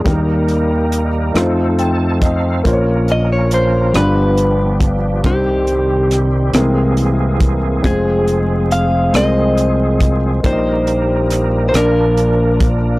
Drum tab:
HH |xxxxxx|xxxxxx|xxxxxx|xxxxxx|
SD |---r--|---r--|--rr--|---r--|
BD |o----o|o----o|o----o|o----o|

HH |xxxxxx|
SD |--rr--|
BD |o----o|